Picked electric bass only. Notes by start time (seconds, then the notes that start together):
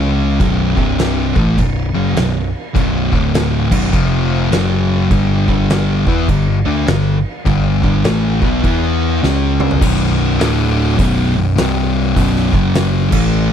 Already playing: C#2
0.40 B0
0.77 C1
1.36 A1
1.58 B0
1.94 F#1
2.16 B0
2.76 B0
3.13 D1
3.72 B0
3.94 F1
4.51 F#1
5.11 G1
5.48 G1
6.07 E2
6.29 G1
6.66 D2
6.88 G1
7.46 G1
7.84 G1
8.05 A1
8.42 B1
8.64 E2
9.23 C#2
9.82 B0
10.40 D1
10.99 B0
11.37 B0
11.58 C1
12.17 B0
12.54 F#1
13.12 A1